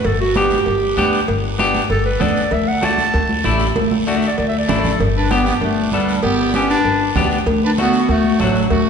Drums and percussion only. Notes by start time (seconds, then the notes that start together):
0.04 cowbell, high conga, long guiro
0.35 high conga, short guiro
0.51 high conga, short guiro
0.66 cowbell, high conga, long guiro
0.97 high conga, short guiro
1.13 short guiro
1.28 cowbell, high conga, long guiro
1.59 high conga, short guiro
1.75 high conga, short guiro
1.90 cowbell, high conga, long guiro
2.21 high conga, low conga, short guiro
2.36 short guiro
2.51 cowbell, high conga, long guiro
2.83 high conga, short guiro
2.98 high conga, short guiro
3.14 cowbell, high conga, long guiro
3.29 high conga
3.44 high conga, short guiro
3.60 short guiro
3.75 cowbell, high conga, long guiro
3.91 high conga
4.07 short guiro
4.22 short guiro
4.38 cowbell, long guiro
4.69 low conga, short guiro
4.84 low conga, short guiro
5.00 cowbell, high conga, long guiro
5.31 high conga, short guiro
5.46 short guiro
5.61 cowbell, high conga, long guiro
5.92 high conga, short guiro
6.09 short guiro
6.23 cowbell, high conga, long guiro
6.54 high conga, short guiro
6.70 short guiro
6.85 cowbell, high conga, long guiro
7.15 high conga, low conga, low timbale, short guiro
7.31 short guiro
7.47 cowbell, high conga, long guiro
7.78 high conga, short guiro
7.93 short guiro
8.09 cowbell, high conga, long guiro
8.24 high conga
8.39 high conga, low timbale, short guiro
8.55 short guiro
8.70 cowbell, high conga, long guiro